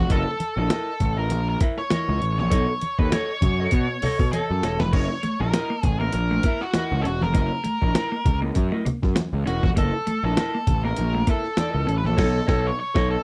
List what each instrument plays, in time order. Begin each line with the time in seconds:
Already playing: lead electric guitar F#4
0.09 picked electric bass F#1, clean electric guitar E4 A#4 D#5, lead electric guitar A4, kick, closed hi-hat, muted conga
0.26 muted clean electric guitar stroke
0.39 muted clean electric guitar stroke, closed hi-hat, muted conga
0.57 picked electric bass A#1, clean electric guitar E4 A#4 D#5, lead electric guitar A4
0.70 clean electric guitar E4 A#4 D#5, snare, closed hi-hat, high conga
1.00 picked electric bass A1, muted clean electric guitar stroke, kick, closed hi-hat, low conga
1.17 clean electric guitar E4 A#4 D#5, lead electric guitar A#4
1.30 picked electric bass A#1, muted clean electric guitar stroke, closed hi-hat, muted conga
1.48 lead electric guitar A#4, muted clean electric guitar stroke
1.61 clean electric guitar E4 A#4 E5, kick, closed hi-hat
1.78 lead electric guitar C#5, muted clean electric guitar stroke, snare
1.90 clean electric guitar E4 A#4 D#5, snare, closed hi-hat, high conga
2.09 picked electric bass C#2
2.21 picked electric bass A1, muted clean electric guitar stroke, closed hi-hat
2.38 picked electric bass A#1, lead electric guitar C#5, muted clean electric guitar stroke, snare, high conga
2.50 picked electric bass B1, clean electric guitar A4 C#5 D#5, kick, closed hi-hat, muted conga
2.68 muted clean electric guitar stroke
2.81 muted clean electric guitar stroke, closed hi-hat, muted conga
2.99 picked electric bass D#2, clean electric guitar A4 C#5 D#5, lead electric guitar B4, kick
3.12 clean electric guitar A4 C#5 D#5, lead electric guitar C#5, snare, closed hi-hat, high conga
3.42 picked electric bass F#2, muted clean electric guitar stroke, kick, closed hi-hat, low conga
3.60 clean electric guitar A4 C#5 D#5
3.71 picked electric bass B2, muted clean electric guitar stroke, kick, closed hi-hat, muted conga
3.90 muted clean electric guitar stroke
4.02 clean electric guitar A4 C#5 D#5, muted picked electric bass stroke, open hi-hat, low conga
4.19 picked electric bass B2, muted clean electric guitar stroke, kick, snare
4.32 lead electric guitar A4, clean electric guitar A4 C#5 D#5, closed hi-hat, high conga
4.49 picked electric bass F#2, muted clean electric guitar stroke
4.63 picked electric bass E1, clean electric guitar A4 C#5 D#5, snare, closed hi-hat
4.80 picked electric bass F1, lead electric guitar B4, muted clean electric guitar stroke, snare, high conga
4.93 picked electric bass F#1, clean electric guitar A#3 E4 A#4 D#5, lead electric guitar C#5, kick, crash, muted conga
5.10 muted clean electric guitar stroke
5.23 clean electric guitar A3, muted clean electric guitar stroke, closed hi-hat, muted conga
5.40 picked electric bass A#1, clean electric guitar E4 A#4 D#5, lead electric guitar A#4, muted clean electric guitar stroke
5.53 clean electric guitar E4 A#4 D#5, snare, closed hi-hat, high conga
5.70 clean electric guitar A#3
5.83 picked electric bass A1, lead electric guitar G#4, muted clean electric guitar stroke, kick, closed hi-hat, low conga
6.00 clean electric guitar A#3 E4 A#4 D#5, lead electric guitar A#4
6.12 picked electric bass A#1, lead electric guitar A#4, muted clean electric guitar stroke, closed hi-hat, muted conga
6.31 clean electric guitar A3, muted clean electric guitar stroke
6.43 clean electric guitar A#3 E4 A#4 E5, kick, closed hi-hat
6.61 lead electric guitar F#4, muted clean electric guitar stroke, snare
6.74 clean electric guitar E4 A#4 D#5, snare, closed hi-hat, high conga
6.92 picked electric bass C#2
7.02 picked electric bass E1, clean electric guitar C#4, lead electric guitar A4, muted clean electric guitar stroke, closed hi-hat
7.06 lead electric guitar F#4
7.21 picked electric bass F1, lead electric guitar A#4, muted clean electric guitar stroke, snare, high conga
7.34 picked electric bass F#1, clean electric guitar A#3 E4 A#4 D#5, kick, closed hi-hat, muted conga
7.51 muted clean electric guitar stroke
7.64 clean electric guitar A3, muted clean electric guitar stroke, closed hi-hat, muted conga
7.82 picked electric bass A#1, clean electric guitar E4 A#4 D#5, muted clean electric guitar stroke, kick
7.94 clean electric guitar E4 A#4 D#5, snare, closed hi-hat, high conga
8.12 clean electric guitar A#3
8.26 picked electric bass C#2, muted clean electric guitar stroke, kick, closed hi-hat, muted conga, low conga
8.42 clean electric guitar A#3 E4 A#4 D#5
8.55 picked electric bass F#2, muted clean electric guitar stroke, kick, closed hi-hat, muted conga
8.72 clean electric guitar A3 E4 A#4 D#5
8.85 clean electric guitar A#3, muted picked electric bass stroke, muted clean electric guitar stroke, closed hi-hat, low conga
9.03 picked electric bass F#2, muted clean electric guitar stroke, kick, snare
9.16 muted clean electric guitar stroke, snare, closed hi-hat, high conga
9.33 picked electric bass C#2
9.46 picked electric bass E1, clean electric guitar C#4 E4 A#4 D#5, lead electric guitar F#4, closed hi-hat
9.63 picked electric bass F1, clean electric guitar A#3, lead electric guitar F#4, muted clean electric guitar stroke, kick, snare, high conga
9.76 picked electric bass F#1, clean electric guitar A#3 E4 A#4 D#5, lead electric guitar A4, kick, closed hi-hat, muted conga
9.94 muted clean electric guitar stroke
10.07 clean electric guitar A3, muted clean electric guitar stroke, closed hi-hat, muted conga
10.24 picked electric bass A#1, clean electric guitar E4 A#4 D#5, lead electric guitar A4, muted clean electric guitar stroke
10.36 clean electric guitar E4 A#4 D#5, snare, closed hi-hat, high conga
10.55 clean electric guitar A#3
10.67 picked electric bass A1, muted clean electric guitar stroke, kick, closed hi-hat, low conga
10.84 clean electric guitar A#3 E4 A#4 D#5, lead electric guitar A#4
10.96 picked electric bass A#1, muted clean electric guitar stroke, closed hi-hat, muted conga
11.14 clean electric guitar A3, muted clean electric guitar stroke
11.27 clean electric guitar A#3 E4 A#4 E5, lead electric guitar A4, kick, closed hi-hat
11.44 muted clean electric guitar stroke, snare
11.57 clean electric guitar D#4 A4 D5, snare, closed hi-hat, high conga
11.70 clean electric guitar E4 A#4 D#5
11.75 picked electric bass C#2
11.87 picked electric bass A1, clean electric guitar C#4, muted clean electric guitar stroke, closed hi-hat
11.98 lead electric guitar B4
12.04 picked electric bass A#1, lead electric guitar A4, muted clean electric guitar stroke, snare, high conga
12.17 picked electric bass B1, clean electric guitar A4 C#5 D#5, kick, snare, crash
12.47 picked electric bass B1, clean electric guitar A4 C#5 D#5, kick, snare
12.67 lead electric guitar C#5
12.80 lead electric guitar C#5
12.94 picked electric bass B1, clean electric guitar A4 C#5 D#5, kick, snare
13.11 lead electric guitar A4